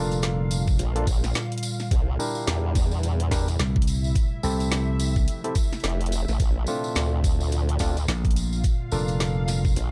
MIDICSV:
0, 0, Header, 1, 7, 480
1, 0, Start_track
1, 0, Tempo, 560748
1, 1638, Time_signature, 4, 2, 24, 8
1, 8486, End_track
2, 0, Start_track
2, 0, Title_t, "Ambient pad"
2, 0, Program_c, 0, 92
2, 0, Note_on_c, 0, 77, 81
2, 1636, Note_off_c, 0, 77, 0
2, 2520, Note_on_c, 0, 76, 72
2, 5478, Note_off_c, 0, 76, 0
2, 6365, Note_on_c, 0, 77, 74
2, 8486, Note_off_c, 0, 77, 0
2, 8486, End_track
3, 0, Start_track
3, 0, Title_t, "Clav"
3, 0, Program_c, 1, 7
3, 0, Note_on_c, 1, 58, 84
3, 0, Note_on_c, 1, 62, 78
3, 0, Note_on_c, 1, 65, 81
3, 0, Note_on_c, 1, 69, 93
3, 785, Note_off_c, 1, 58, 0
3, 785, Note_off_c, 1, 62, 0
3, 785, Note_off_c, 1, 65, 0
3, 785, Note_off_c, 1, 69, 0
3, 819, Note_on_c, 1, 58, 83
3, 819, Note_on_c, 1, 62, 74
3, 819, Note_on_c, 1, 65, 75
3, 819, Note_on_c, 1, 69, 90
3, 921, Note_off_c, 1, 58, 0
3, 921, Note_off_c, 1, 62, 0
3, 921, Note_off_c, 1, 65, 0
3, 921, Note_off_c, 1, 69, 0
3, 1877, Note_on_c, 1, 62, 89
3, 1877, Note_on_c, 1, 64, 83
3, 1877, Note_on_c, 1, 70, 102
3, 1878, Note_on_c, 1, 67, 83
3, 2814, Note_off_c, 1, 62, 0
3, 2814, Note_off_c, 1, 64, 0
3, 2814, Note_off_c, 1, 67, 0
3, 2814, Note_off_c, 1, 70, 0
3, 2834, Note_on_c, 1, 70, 109
3, 2835, Note_on_c, 1, 62, 98
3, 2835, Note_on_c, 1, 64, 89
3, 2835, Note_on_c, 1, 67, 87
3, 2980, Note_off_c, 1, 62, 0
3, 2980, Note_off_c, 1, 70, 0
3, 2981, Note_off_c, 1, 64, 0
3, 2981, Note_off_c, 1, 67, 0
3, 3796, Note_on_c, 1, 60, 84
3, 3796, Note_on_c, 1, 64, 79
3, 3796, Note_on_c, 1, 67, 79
3, 3796, Note_on_c, 1, 69, 94
3, 4625, Note_off_c, 1, 60, 0
3, 4625, Note_off_c, 1, 64, 0
3, 4625, Note_off_c, 1, 67, 0
3, 4625, Note_off_c, 1, 69, 0
3, 4658, Note_on_c, 1, 60, 83
3, 4658, Note_on_c, 1, 64, 75
3, 4658, Note_on_c, 1, 69, 89
3, 4659, Note_on_c, 1, 67, 76
3, 4760, Note_off_c, 1, 64, 0
3, 4760, Note_off_c, 1, 69, 0
3, 4761, Note_off_c, 1, 60, 0
3, 4761, Note_off_c, 1, 67, 0
3, 5715, Note_on_c, 1, 65, 99
3, 5716, Note_on_c, 1, 57, 87
3, 5716, Note_on_c, 1, 60, 82
3, 5716, Note_on_c, 1, 62, 79
3, 6653, Note_off_c, 1, 60, 0
3, 6653, Note_off_c, 1, 62, 0
3, 6653, Note_off_c, 1, 65, 0
3, 6654, Note_off_c, 1, 57, 0
3, 6675, Note_on_c, 1, 57, 97
3, 6675, Note_on_c, 1, 60, 90
3, 6676, Note_on_c, 1, 62, 91
3, 6676, Note_on_c, 1, 65, 108
3, 6821, Note_off_c, 1, 57, 0
3, 6821, Note_off_c, 1, 60, 0
3, 6821, Note_off_c, 1, 62, 0
3, 6821, Note_off_c, 1, 65, 0
3, 7635, Note_on_c, 1, 69, 99
3, 7636, Note_on_c, 1, 58, 85
3, 7636, Note_on_c, 1, 62, 78
3, 7636, Note_on_c, 1, 65, 78
3, 8464, Note_off_c, 1, 69, 0
3, 8465, Note_off_c, 1, 58, 0
3, 8465, Note_off_c, 1, 62, 0
3, 8465, Note_off_c, 1, 65, 0
3, 8486, End_track
4, 0, Start_track
4, 0, Title_t, "Ambient pad"
4, 0, Program_c, 2, 92
4, 0, Note_on_c, 2, 46, 73
4, 0, Note_on_c, 2, 50, 81
4, 0, Note_on_c, 2, 55, 74
4, 0, Note_on_c, 2, 65, 88
4, 1603, Note_off_c, 2, 50, 0
4, 1621, Note_off_c, 2, 65, 0
4, 1636, Note_on_c, 2, 48, 77
4, 1636, Note_on_c, 2, 64, 85
4, 3523, Note_off_c, 2, 46, 0
4, 3525, Note_off_c, 2, 55, 0
4, 3538, Note_off_c, 2, 48, 0
4, 3553, Note_on_c, 2, 53, 72
4, 3554, Note_on_c, 2, 48, 78
4, 3554, Note_on_c, 2, 57, 74
4, 5443, Note_off_c, 2, 64, 0
4, 5456, Note_off_c, 2, 53, 0
4, 5457, Note_off_c, 2, 48, 0
4, 5477, Note_on_c, 2, 46, 71
4, 5477, Note_on_c, 2, 50, 79
4, 5477, Note_on_c, 2, 65, 90
4, 7362, Note_off_c, 2, 57, 0
4, 7398, Note_on_c, 2, 55, 72
4, 8486, Note_off_c, 2, 46, 0
4, 8486, Note_off_c, 2, 50, 0
4, 8486, Note_off_c, 2, 55, 0
4, 8486, Note_off_c, 2, 65, 0
4, 8486, End_track
5, 0, Start_track
5, 0, Title_t, "Slap bass"
5, 0, Program_c, 3, 36
5, 0, Note_on_c, 3, 29, 98
5, 663, Note_off_c, 3, 29, 0
5, 3077, Note_on_c, 3, 36, 97
5, 3542, Note_off_c, 3, 36, 0
5, 3798, Note_on_c, 3, 36, 93
5, 4502, Note_off_c, 3, 36, 0
5, 6918, Note_on_c, 3, 34, 97
5, 7382, Note_off_c, 3, 34, 0
5, 7636, Note_on_c, 3, 29, 99
5, 8341, Note_off_c, 3, 29, 0
5, 8486, End_track
6, 0, Start_track
6, 0, Title_t, "Wobble bass"
6, 0, Program_c, 4, 39
6, 677, Note_on_c, 4, 34, 98
6, 902, Note_off_c, 4, 34, 0
6, 916, Note_on_c, 4, 34, 100
6, 1141, Note_off_c, 4, 34, 0
6, 1637, Note_on_c, 4, 36, 98
6, 1862, Note_off_c, 4, 36, 0
6, 2117, Note_on_c, 4, 40, 96
6, 2822, Note_off_c, 4, 40, 0
6, 2836, Note_on_c, 4, 40, 99
6, 3061, Note_off_c, 4, 40, 0
6, 4995, Note_on_c, 4, 29, 94
6, 5356, Note_off_c, 4, 29, 0
6, 5378, Note_on_c, 4, 33, 98
6, 5461, Note_off_c, 4, 33, 0
6, 5476, Note_on_c, 4, 34, 97
6, 5701, Note_off_c, 4, 34, 0
6, 5955, Note_on_c, 4, 38, 94
6, 6661, Note_off_c, 4, 38, 0
6, 6677, Note_on_c, 4, 38, 96
6, 6902, Note_off_c, 4, 38, 0
6, 8357, Note_on_c, 4, 34, 97
6, 8486, Note_off_c, 4, 34, 0
6, 8486, End_track
7, 0, Start_track
7, 0, Title_t, "Drums"
7, 100, Note_on_c, 9, 42, 38
7, 104, Note_on_c, 9, 54, 50
7, 185, Note_off_c, 9, 42, 0
7, 190, Note_off_c, 9, 54, 0
7, 191, Note_on_c, 9, 54, 37
7, 197, Note_on_c, 9, 38, 127
7, 197, Note_on_c, 9, 42, 85
7, 276, Note_off_c, 9, 54, 0
7, 283, Note_off_c, 9, 38, 0
7, 283, Note_off_c, 9, 42, 0
7, 434, Note_on_c, 9, 54, 98
7, 438, Note_on_c, 9, 42, 70
7, 520, Note_off_c, 9, 54, 0
7, 523, Note_off_c, 9, 42, 0
7, 577, Note_on_c, 9, 54, 52
7, 579, Note_on_c, 9, 36, 109
7, 662, Note_off_c, 9, 54, 0
7, 665, Note_off_c, 9, 36, 0
7, 676, Note_on_c, 9, 54, 39
7, 678, Note_on_c, 9, 42, 85
7, 761, Note_off_c, 9, 54, 0
7, 764, Note_off_c, 9, 42, 0
7, 820, Note_on_c, 9, 42, 69
7, 906, Note_off_c, 9, 42, 0
7, 916, Note_on_c, 9, 54, 97
7, 917, Note_on_c, 9, 36, 108
7, 919, Note_on_c, 9, 42, 72
7, 1002, Note_off_c, 9, 36, 0
7, 1002, Note_off_c, 9, 54, 0
7, 1004, Note_off_c, 9, 42, 0
7, 1060, Note_on_c, 9, 40, 55
7, 1060, Note_on_c, 9, 42, 39
7, 1065, Note_on_c, 9, 54, 57
7, 1145, Note_off_c, 9, 40, 0
7, 1145, Note_off_c, 9, 42, 0
7, 1147, Note_off_c, 9, 54, 0
7, 1147, Note_on_c, 9, 54, 41
7, 1158, Note_on_c, 9, 38, 125
7, 1158, Note_on_c, 9, 42, 85
7, 1233, Note_off_c, 9, 54, 0
7, 1244, Note_off_c, 9, 38, 0
7, 1244, Note_off_c, 9, 42, 0
7, 1300, Note_on_c, 9, 42, 53
7, 1349, Note_off_c, 9, 42, 0
7, 1349, Note_on_c, 9, 42, 69
7, 1392, Note_on_c, 9, 54, 98
7, 1396, Note_off_c, 9, 42, 0
7, 1396, Note_on_c, 9, 42, 71
7, 1478, Note_off_c, 9, 54, 0
7, 1482, Note_off_c, 9, 42, 0
7, 1537, Note_on_c, 9, 54, 50
7, 1539, Note_on_c, 9, 40, 37
7, 1622, Note_off_c, 9, 54, 0
7, 1625, Note_off_c, 9, 40, 0
7, 1637, Note_on_c, 9, 36, 127
7, 1638, Note_on_c, 9, 42, 80
7, 1638, Note_on_c, 9, 54, 41
7, 1722, Note_off_c, 9, 36, 0
7, 1723, Note_off_c, 9, 42, 0
7, 1724, Note_off_c, 9, 54, 0
7, 1881, Note_on_c, 9, 54, 104
7, 1966, Note_off_c, 9, 54, 0
7, 2012, Note_on_c, 9, 54, 57
7, 2098, Note_off_c, 9, 54, 0
7, 2117, Note_on_c, 9, 54, 42
7, 2118, Note_on_c, 9, 38, 127
7, 2118, Note_on_c, 9, 42, 87
7, 2203, Note_off_c, 9, 54, 0
7, 2204, Note_off_c, 9, 38, 0
7, 2204, Note_off_c, 9, 42, 0
7, 2356, Note_on_c, 9, 36, 114
7, 2358, Note_on_c, 9, 40, 39
7, 2358, Note_on_c, 9, 42, 68
7, 2361, Note_on_c, 9, 54, 103
7, 2442, Note_off_c, 9, 36, 0
7, 2444, Note_off_c, 9, 40, 0
7, 2444, Note_off_c, 9, 42, 0
7, 2446, Note_off_c, 9, 54, 0
7, 2494, Note_on_c, 9, 54, 53
7, 2580, Note_off_c, 9, 54, 0
7, 2597, Note_on_c, 9, 42, 82
7, 2599, Note_on_c, 9, 54, 39
7, 2683, Note_off_c, 9, 42, 0
7, 2685, Note_off_c, 9, 54, 0
7, 2739, Note_on_c, 9, 42, 68
7, 2824, Note_off_c, 9, 42, 0
7, 2836, Note_on_c, 9, 36, 66
7, 2837, Note_on_c, 9, 38, 66
7, 2837, Note_on_c, 9, 40, 38
7, 2837, Note_on_c, 9, 42, 72
7, 2843, Note_on_c, 9, 54, 107
7, 2922, Note_off_c, 9, 36, 0
7, 2923, Note_off_c, 9, 38, 0
7, 2923, Note_off_c, 9, 40, 0
7, 2923, Note_off_c, 9, 42, 0
7, 2929, Note_off_c, 9, 54, 0
7, 2981, Note_on_c, 9, 42, 38
7, 2982, Note_on_c, 9, 54, 58
7, 3066, Note_off_c, 9, 42, 0
7, 3067, Note_off_c, 9, 54, 0
7, 3073, Note_on_c, 9, 54, 40
7, 3077, Note_on_c, 9, 38, 123
7, 3077, Note_on_c, 9, 42, 82
7, 3159, Note_off_c, 9, 54, 0
7, 3163, Note_off_c, 9, 38, 0
7, 3163, Note_off_c, 9, 42, 0
7, 3218, Note_on_c, 9, 36, 112
7, 3269, Note_on_c, 9, 42, 68
7, 3304, Note_off_c, 9, 36, 0
7, 3315, Note_on_c, 9, 54, 88
7, 3319, Note_off_c, 9, 42, 0
7, 3319, Note_on_c, 9, 42, 69
7, 3401, Note_off_c, 9, 54, 0
7, 3405, Note_off_c, 9, 42, 0
7, 3460, Note_on_c, 9, 54, 54
7, 3546, Note_off_c, 9, 54, 0
7, 3556, Note_on_c, 9, 36, 124
7, 3558, Note_on_c, 9, 54, 45
7, 3559, Note_on_c, 9, 42, 80
7, 3642, Note_off_c, 9, 36, 0
7, 3643, Note_off_c, 9, 54, 0
7, 3644, Note_off_c, 9, 42, 0
7, 3795, Note_on_c, 9, 54, 92
7, 3880, Note_off_c, 9, 54, 0
7, 3940, Note_on_c, 9, 42, 37
7, 3943, Note_on_c, 9, 54, 54
7, 4025, Note_off_c, 9, 42, 0
7, 4028, Note_off_c, 9, 54, 0
7, 4035, Note_on_c, 9, 54, 42
7, 4037, Note_on_c, 9, 38, 127
7, 4037, Note_on_c, 9, 42, 83
7, 4121, Note_off_c, 9, 54, 0
7, 4122, Note_off_c, 9, 38, 0
7, 4122, Note_off_c, 9, 42, 0
7, 4275, Note_on_c, 9, 54, 92
7, 4278, Note_on_c, 9, 42, 64
7, 4361, Note_off_c, 9, 54, 0
7, 4363, Note_off_c, 9, 42, 0
7, 4418, Note_on_c, 9, 36, 110
7, 4419, Note_on_c, 9, 54, 55
7, 4504, Note_off_c, 9, 36, 0
7, 4505, Note_off_c, 9, 54, 0
7, 4516, Note_on_c, 9, 54, 43
7, 4518, Note_on_c, 9, 42, 78
7, 4602, Note_off_c, 9, 54, 0
7, 4603, Note_off_c, 9, 42, 0
7, 4660, Note_on_c, 9, 42, 65
7, 4746, Note_off_c, 9, 42, 0
7, 4751, Note_on_c, 9, 54, 102
7, 4756, Note_on_c, 9, 36, 112
7, 4759, Note_on_c, 9, 42, 67
7, 4837, Note_off_c, 9, 54, 0
7, 4841, Note_off_c, 9, 36, 0
7, 4844, Note_off_c, 9, 42, 0
7, 4901, Note_on_c, 9, 40, 50
7, 4901, Note_on_c, 9, 42, 16
7, 4902, Note_on_c, 9, 54, 52
7, 4965, Note_off_c, 9, 42, 0
7, 4965, Note_on_c, 9, 42, 22
7, 4987, Note_off_c, 9, 40, 0
7, 4987, Note_off_c, 9, 54, 0
7, 4995, Note_on_c, 9, 54, 41
7, 4997, Note_off_c, 9, 42, 0
7, 4997, Note_on_c, 9, 38, 120
7, 4997, Note_on_c, 9, 42, 78
7, 5046, Note_off_c, 9, 42, 0
7, 5046, Note_on_c, 9, 42, 29
7, 5080, Note_off_c, 9, 54, 0
7, 5083, Note_off_c, 9, 38, 0
7, 5132, Note_off_c, 9, 42, 0
7, 5142, Note_on_c, 9, 42, 50
7, 5189, Note_off_c, 9, 42, 0
7, 5189, Note_on_c, 9, 42, 67
7, 5239, Note_off_c, 9, 42, 0
7, 5239, Note_on_c, 9, 42, 66
7, 5241, Note_on_c, 9, 54, 99
7, 5325, Note_off_c, 9, 42, 0
7, 5327, Note_off_c, 9, 54, 0
7, 5378, Note_on_c, 9, 54, 54
7, 5382, Note_on_c, 9, 40, 36
7, 5464, Note_off_c, 9, 54, 0
7, 5467, Note_off_c, 9, 40, 0
7, 5477, Note_on_c, 9, 36, 122
7, 5478, Note_on_c, 9, 42, 74
7, 5481, Note_on_c, 9, 54, 38
7, 5562, Note_off_c, 9, 36, 0
7, 5564, Note_off_c, 9, 42, 0
7, 5566, Note_off_c, 9, 54, 0
7, 5706, Note_on_c, 9, 54, 92
7, 5792, Note_off_c, 9, 54, 0
7, 5854, Note_on_c, 9, 54, 57
7, 5940, Note_off_c, 9, 54, 0
7, 5952, Note_on_c, 9, 54, 39
7, 5958, Note_on_c, 9, 38, 123
7, 5958, Note_on_c, 9, 42, 78
7, 6037, Note_off_c, 9, 54, 0
7, 6044, Note_off_c, 9, 38, 0
7, 6044, Note_off_c, 9, 42, 0
7, 6197, Note_on_c, 9, 36, 108
7, 6199, Note_on_c, 9, 42, 65
7, 6199, Note_on_c, 9, 54, 103
7, 6283, Note_off_c, 9, 36, 0
7, 6285, Note_off_c, 9, 42, 0
7, 6285, Note_off_c, 9, 54, 0
7, 6339, Note_on_c, 9, 54, 55
7, 6424, Note_off_c, 9, 54, 0
7, 6433, Note_on_c, 9, 54, 40
7, 6440, Note_on_c, 9, 42, 77
7, 6519, Note_off_c, 9, 54, 0
7, 6525, Note_off_c, 9, 42, 0
7, 6583, Note_on_c, 9, 42, 63
7, 6668, Note_off_c, 9, 42, 0
7, 6669, Note_on_c, 9, 54, 99
7, 6677, Note_on_c, 9, 36, 61
7, 6681, Note_on_c, 9, 38, 63
7, 6681, Note_on_c, 9, 40, 37
7, 6681, Note_on_c, 9, 42, 66
7, 6755, Note_off_c, 9, 54, 0
7, 6763, Note_off_c, 9, 36, 0
7, 6767, Note_off_c, 9, 38, 0
7, 6767, Note_off_c, 9, 40, 0
7, 6767, Note_off_c, 9, 42, 0
7, 6820, Note_on_c, 9, 54, 52
7, 6823, Note_on_c, 9, 42, 36
7, 6906, Note_off_c, 9, 54, 0
7, 6909, Note_off_c, 9, 42, 0
7, 6917, Note_on_c, 9, 54, 40
7, 6920, Note_on_c, 9, 38, 119
7, 6920, Note_on_c, 9, 42, 74
7, 7002, Note_off_c, 9, 54, 0
7, 7006, Note_off_c, 9, 38, 0
7, 7006, Note_off_c, 9, 42, 0
7, 7059, Note_on_c, 9, 36, 107
7, 7062, Note_on_c, 9, 42, 49
7, 7110, Note_off_c, 9, 42, 0
7, 7110, Note_on_c, 9, 42, 64
7, 7145, Note_off_c, 9, 36, 0
7, 7159, Note_off_c, 9, 42, 0
7, 7159, Note_on_c, 9, 42, 64
7, 7159, Note_on_c, 9, 54, 86
7, 7245, Note_off_c, 9, 42, 0
7, 7245, Note_off_c, 9, 54, 0
7, 7299, Note_on_c, 9, 54, 55
7, 7384, Note_off_c, 9, 54, 0
7, 7392, Note_on_c, 9, 54, 38
7, 7397, Note_on_c, 9, 36, 116
7, 7399, Note_on_c, 9, 42, 78
7, 7478, Note_off_c, 9, 54, 0
7, 7483, Note_off_c, 9, 36, 0
7, 7485, Note_off_c, 9, 42, 0
7, 7632, Note_on_c, 9, 54, 84
7, 7718, Note_off_c, 9, 54, 0
7, 7773, Note_on_c, 9, 54, 48
7, 7781, Note_on_c, 9, 42, 35
7, 7859, Note_off_c, 9, 54, 0
7, 7866, Note_off_c, 9, 42, 0
7, 7878, Note_on_c, 9, 38, 121
7, 7878, Note_on_c, 9, 42, 79
7, 7878, Note_on_c, 9, 54, 37
7, 7963, Note_off_c, 9, 38, 0
7, 7963, Note_off_c, 9, 42, 0
7, 7964, Note_off_c, 9, 54, 0
7, 8113, Note_on_c, 9, 54, 82
7, 8119, Note_on_c, 9, 40, 39
7, 8119, Note_on_c, 9, 42, 64
7, 8199, Note_off_c, 9, 54, 0
7, 8204, Note_off_c, 9, 40, 0
7, 8204, Note_off_c, 9, 42, 0
7, 8258, Note_on_c, 9, 36, 98
7, 8262, Note_on_c, 9, 54, 52
7, 8344, Note_off_c, 9, 36, 0
7, 8348, Note_off_c, 9, 54, 0
7, 8357, Note_on_c, 9, 54, 40
7, 8358, Note_on_c, 9, 42, 77
7, 8442, Note_off_c, 9, 54, 0
7, 8444, Note_off_c, 9, 42, 0
7, 8486, End_track
0, 0, End_of_file